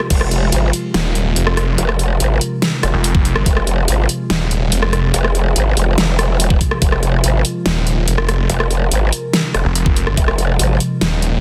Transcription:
Already playing: ambient pad C3 F3 G#3 F4
0.10 wobble bass F1, ambient pad A#4, kick, closed hi-hat, crash
0.21 cross-stick
0.31 closed hi-hat
0.52 wobble bass G#1, closed hi-hat
0.73 closed hi-hat
0.94 detuned saw bass D#1, snare, closed hi-hat
1.15 closed hi-hat
1.36 detuned saw bass F1, closed hi-hat
1.47 cross-stick
1.57 cross-stick, closed hi-hat
1.78 wobble bass F1, closed hi-hat
1.89 cross-stick
1.99 closed hi-hat
2.20 wobble bass G#1, closed hi-hat
2.41 closed hi-hat
2.62 snare, closed hi-hat
2.83 wobble bass F1, cross-stick, closed hi-hat
2.94 detuned saw bass F1
3.04 closed hi-hat
3.15 kick
3.25 closed hi-hat
3.36 detuned saw bass G1, cross-stick
3.46 wobble bass F1, ambient pad G#4, kick, closed hi-hat
3.57 cross-stick
3.67 closed hi-hat
3.88 wobble bass G#1, closed hi-hat
4.09 closed hi-hat
4.30 detuned saw bass D#1, snare, closed hi-hat
4.51 closed hi-hat
4.72 detuned saw bass F1, closed hi-hat
4.83 cross-stick
4.93 cross-stick, closed hi-hat
5.14 wobble bass F1, closed hi-hat
5.24 cross-stick
5.35 closed hi-hat
5.56 wobble bass G#1, closed hi-hat
5.77 wobble bass F1, closed hi-hat
5.98 wobble bass F1, snare, closed hi-hat
6.19 cross-stick, closed hi-hat
6.40 wobble bass E1, closed hi-hat
6.50 kick
6.61 kick, closed hi-hat
6.71 cross-stick
6.82 wobble bass F1, ambient pad A#4, kick, closed hi-hat
6.92 cross-stick
7.03 closed hi-hat
7.24 wobble bass G#1, closed hi-hat
7.45 closed hi-hat
7.66 detuned saw bass D#1, snare, closed hi-hat
7.87 closed hi-hat
8.08 detuned saw bass F1, closed hi-hat
8.18 cross-stick
8.29 cross-stick, closed hi-hat
8.50 wobble bass F1, closed hi-hat
8.60 cross-stick
8.71 closed hi-hat
8.92 wobble bass G#1, closed hi-hat
9.12 closed hi-hat
9.33 snare, closed hi-hat
9.54 wobble bass F1, cross-stick, closed hi-hat
9.65 detuned saw bass F1
9.75 closed hi-hat
9.86 kick
9.96 closed hi-hat
10.07 detuned saw bass G1, cross-stick
10.17 wobble bass F1, ambient pad D#5, kick, closed hi-hat
10.28 cross-stick
10.38 closed hi-hat
10.59 wobble bass G#1, closed hi-hat
10.80 closed hi-hat
11.01 detuned saw bass D#1, snare, closed hi-hat
11.22 closed hi-hat

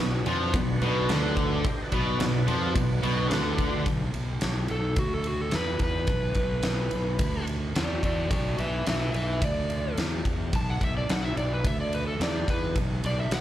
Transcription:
Already playing: tonewheel organ D4 F#4 B4
0.00 fingered electric bass B1, distorted electric guitar B2
0.26 fingered electric bass F2, distorted electric guitar F3, ride
0.54 fingered electric bass B1, distorted electric guitar B2, kick, ride
0.81 fingered electric bass B1, distorted electric guitar B2, ride
1.09 fingered electric bass D2, distorted electric guitar D3, snare, ride
1.37 kick, ride
1.64 tonewheel organ G4 C5 D#5, kick, ride
1.83 tonewheel organ F#4 B4 D5
1.92 fingered electric bass B1, distorted electric guitar B2, kick, ride
2.20 fingered electric bass B1, distorted electric guitar B2, snare, ride
2.48 fingered electric bass F2, distorted electric guitar F3, ride
2.75 fingered electric bass B1, distorted electric guitar B2, kick, ride
3.03 fingered electric bass B1, distorted electric guitar B2, ride
3.31 fingered electric bass D2, distorted electric guitar D3, snare, ride
3.58 kick, ride
3.86 fingered electric bass B1, kick, ride
4.14 fingered electric bass B1, ride
4.41 fingered electric bass B1, snare, ride
4.68 fingered electric bass B1, electric slide guitar A4, ride
4.96 fingered electric bass D2, electric slide guitar F#4, kick, ride
5.14 electric slide guitar A4
5.24 electric slide guitar F#4, ride
5.41 electric slide guitar A4
5.51 fingered electric bass E2, electric slide guitar B4, snare, ride
5.79 fingered electric bass E2, electric slide guitar B4, kick, ride
6.07 fingered electric bass B1, kick, ride
6.34 fingered electric bass B1, kick, ride
6.63 fingered electric bass B1, snare, ride
6.91 fingered electric bass B1, ride
7.19 fingered electric bass D2, kick, ride
7.47 ride
7.75 fingered electric bass E2, electric slide guitar F#4 D5, snare, ride
8.03 fingered electric bass E2, electric slide guitar F#4 D5, kick, ride
8.31 fingered electric bass B1, electric slide guitar F#4 D5, kick, ride
8.58 fingered electric bass B1, electric slide guitar B4 E5, ride
8.86 fingered electric bass B1, electric slide guitar B4 E5, snare, ride
9.14 fingered electric bass B1, electric slide guitar B4 E5, ride
9.42 fingered electric bass D2, electric slide guitar D5, kick, ride
9.70 ride
9.97 fingered electric bass E2, snare, ride
10.25 fingered electric bass E2, kick, ride
10.53 fingered electric bass B1, electric slide guitar A5, kick, ride
10.70 electric slide guitar F#5
10.81 fingered electric bass B1, electric slide guitar E5, kick, ride
10.97 electric slide guitar D5
11.08 fingered electric bass B1, electric slide guitar F#5, snare, ride
11.25 electric slide guitar E5
11.36 fingered electric bass B1, electric slide guitar D5, ride
11.54 electric slide guitar B4
11.65 fingered electric bass D2, electric slide guitar E5, kick, ride
11.81 electric slide guitar D5
11.93 electric slide guitar B4, ride
12.07 electric slide guitar A4
12.20 fingered electric bass E2, electric slide guitar D5, snare, ride
12.48 fingered electric bass E2, electric slide guitar B4, kick, ride
12.76 fingered electric bass B1, kick, ride
13.04 fingered electric bass B1, electric slide guitar D5, ride
13.19 electric slide guitar E5
13.31 fingered electric bass B1, electric slide guitar F#5, snare, ride

